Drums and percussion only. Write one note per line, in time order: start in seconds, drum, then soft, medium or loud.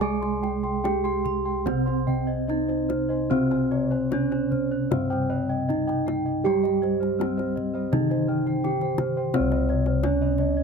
0.23 kendang slap soft
0.44 kendang slap soft
0.64 kendang slap soft
0.85 kendang slap soft
0.85 kendang high medium
1.05 kendang slap soft
1.26 kendang low medium
1.67 kendang high medium
1.67 kendang low medium
1.87 kendang slap soft
2.08 kendang low medium
2.49 kendang slap soft
2.69 kendang slap soft
2.90 kendang slap soft
2.90 kendang high soft
2.90 kendang low medium
3.51 kendang slap soft
3.72 kendang slap soft
3.92 kendang slap soft
4.12 kendang slap soft
4.12 kendang high medium
4.32 kendang slap soft
4.52 kendang low medium
4.92 kendang high medium
4.92 kendang low medium
5.12 kendang slap soft
5.70 kendang slap soft
5.70 kendang low medium
5.89 kendang slap soft
6.08 kendang slap soft
6.08 kendang high soft
6.65 kendang slap soft
6.83 kendang slap soft
7.03 kendang slap soft
7.21 kendang slap soft
7.21 kendang high soft
7.39 kendang slap soft
7.57 kendang low soft
7.93 kendang high soft
7.93 kendang low medium
8.11 kendang slap soft
8.47 kendang slap soft
8.65 kendang slap soft
8.81 kendang slap soft
8.98 kendang slap soft
8.98 kendang high soft
8.98 kendang low medium
9.34 kendang high medium
9.34 kendang low medium
9.52 kendang slap soft
9.69 kendang slap soft
9.86 kendang slap soft
10.03 kendang high medium
10.38 kendang low medium